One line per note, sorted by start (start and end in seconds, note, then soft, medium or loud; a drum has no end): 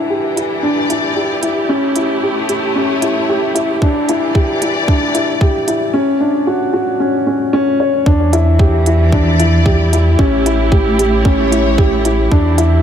0.00 1.69 E3 medium
0.00 0.63 D4 medium
0.00 0.36 E4 medium
0.00 5.94 E4 medium
0.10 0.35 G4 medium
0.19 5.94 G4 medium
0.36 0.62 E4 medium
0.36 closed hi-hat medium
0.54 1.70 D5 medium
0.63 0.78 D4 medium
0.90 1.05 E4 medium
0.90 closed hi-hat medium
1.16 1.42 G4 medium
1.43 1.68 E4 medium
1.43 closed hi-hat medium
1.69 3.82 A3 medium
1.69 1.95 C#4 medium
1.96 2.21 E4 medium
1.96 closed hi-hat medium
2.23 2.48 G4 medium
2.49 2.74 G4 medium
2.49 closed hi-hat medium
2.64 3.82 C#5 medium
2.76 2.91 C#4 medium
3.02 3.17 E4 medium
3.02 closed hi-hat medium
3.29 3.44 G4 medium
3.55 3.80 E4 medium
3.55 closed hi-hat medium
3.82 5.94 E3 medium
3.82 4.08 D4 medium
3.82 kick loud
4.09 4.34 E4 medium
4.09 5.94 D5 medium
4.09 closed hi-hat medium
4.35 4.60 G4 medium
4.35 kick loud
4.62 4.87 E4 medium
4.62 closed hi-hat medium
4.87 5.03 D4 medium
4.87 kick loud
5.15 5.30 E4 medium
5.15 closed hi-hat medium
5.41 5.67 G4 medium
5.41 kick loud
5.68 5.93 E4 medium
5.68 closed hi-hat medium
5.94 6.19 C#4 medium
6.20 6.46 D4 medium
6.47 6.72 F#4 medium
6.73 6.99 F#4 medium
7.00 7.15 C#4 medium
7.27 7.42 C#4 medium
7.53 7.79 C#4 loud
7.80 8.05 C#5 medium
8.06 10.16 E2 medium
8.06 10.20 E3 medium
8.06 8.32 D4 loud
8.06 kick loud
8.33 8.58 E4 loud
8.33 closed hi-hat medium
8.50 12.82 E4 medium
8.59 8.85 G4 medium
8.59 kick loud
8.86 9.12 E4 medium
8.86 closed hi-hat medium
9.03 12.82 G4 medium
9.03 10.19 D5 medium
9.12 9.28 D4 medium
9.12 kick loud
9.40 9.55 E4 medium
9.40 closed hi-hat medium
9.66 9.91 G4 medium
9.66 kick loud
9.93 10.18 E4 medium
9.93 closed hi-hat medium
10.19 12.29 A1 medium
10.19 12.31 A3 medium
10.19 10.44 C#4 loud
10.19 kick loud
10.46 10.71 E4 medium
10.46 closed hi-hat medium
10.72 10.97 G4 medium
10.72 kick loud
10.99 11.24 G4 medium
10.99 closed hi-hat medium
11.13 12.31 C#5 medium
11.25 11.40 C#4 medium
11.25 kick loud
11.52 11.67 E4 medium
11.52 closed hi-hat medium
11.78 11.94 G4 medium
11.78 kick loud
12.05 12.30 E4 medium
12.05 closed hi-hat medium
12.31 12.82 E2 medium
12.31 12.82 E3 medium
12.31 12.57 D4 loud
12.31 kick loud
12.58 12.82 E4 medium
12.58 closed hi-hat medium